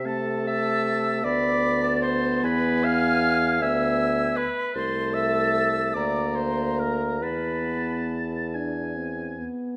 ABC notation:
X:1
M:6/8
L:1/16
Q:3/8=49
K:Ephr
V:1 name="Flute"
a2 e'4 d'4 c'2 | b2 f'4 e'4 b2 | c'2 e'4 d'2 c'2 _b2 | b6 z6 |]
V:2 name="Oboe"
a6 b3 a3 | ^g6 g4- g z | a6 _b6 | a6 ^g4 z2 |]
V:3 name="Clarinet"
A2 e4 d4 c2 | B2 f4 e4 B2 | c2 e4 d2 c2 _B2 | B6 z6 |]
V:4 name="French horn"
A,6 B,6- | B,6 B,4 z2 | A,6 _B,6 | B,6 D2 C2 B,2 |]
V:5 name="Bassoon" clef=bass
C,6 D,,6 | E,,6 D,,4 z2 | C,,6 D,,6 | E,,8- E,,2 z2 |]